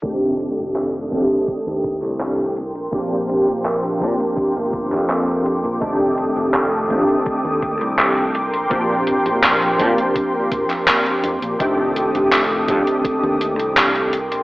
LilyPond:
<<
  \new Staff \with { instrumentName = "Analog synth pad" } { \time 4/4 \key f \mixolydian \tempo 4 = 83 << { <a' d''' ees'''>2.~ <a' d''' ees'''>8 <bes' c'''>8~ | <bes' c'''>1 | <a' ees'''>2.~ <a' ees'''>8 <bes' c'''>8~ | <bes' c'''>1 |
<a' d''' ees'''>2.~ <a' d''' ees'''>8 <bes' c'''>8 | } \\ { g''1~ | g''1 | g''1~ | g''1 |
g''1 | } >> }
  \new Staff \with { instrumentName = "Synth keys" } { \time 4/4 \key f \mixolydian <ees a c' d' g'>4. <ees a c' d' g'>2 r8 | <f bes c' d' g'>4. <f bes c' d' g'>2~ <f bes c' d' g'>8 | <ees a c' d' g'>4. <ees a c' d' g'>2 r8 | <f bes c' d' g'>4. <f bes c' d' g'>2~ <f bes c' d' g'>8 |
<ees a c' d' g'>4. <ees a c' d' g'>2 r8 | }
  \new Staff \with { instrumentName = "Fingered electric bass" } { \clef bass \time 4/4 \key f \mixolydian f,,8. f,,8. f,16 r8 ees,8 c,4 bes,,16 | bes,,8. bes,,8. bes,16 r8 g,,8 f,4 bes,,16 | f,,8. f,,8. f,16 r8 ees,8 c,4 bes,,16 | bes,,8. bes,,8. bes,16 r8. bes,,16 r8. f,16 bes,,16 |
f,,8. f,,8. f,16 r8 ees,8 c,4 bes,,16 | }
  \new DrumStaff \with { instrumentName = "Drums" } \drummode { \time 4/4 <hh bd>8 hh16 hh16 <hc hh>8 <hh bd>16 hh16 <hh bd>8 <hh bd>16 hh16 <hc hh>16 hh16 hh16 hh16 | <hh bd>8 hh16 hh16 <hc hh>16 hh16 <hh bd>16 hh16 <hh bd>8 <hh bd>16 <hc hh>16 <hc hh>16 hh16 hh16 hh16 | <hh bd>8 hh16 hh16 <hc hh>8 <hh bd>16 hh16 <hh bd>8 <hh bd>16 hh16 <hc hh>16 hh16 hh16 hh16 | <hh bd>8 hh16 hh16 <hc hh>16 hh16 <hh bd>16 hh16 <hh bd>8 <hh bd>16 <hc hh>16 <hc hh>16 hh16 hh16 hh16 |
<hh bd>8 hh16 hh16 <hc hh>8 <hh bd>16 hh16 <hh bd>8 hh16 hh16 <hc hh>16 hh16 hh16 hh16 | }
>>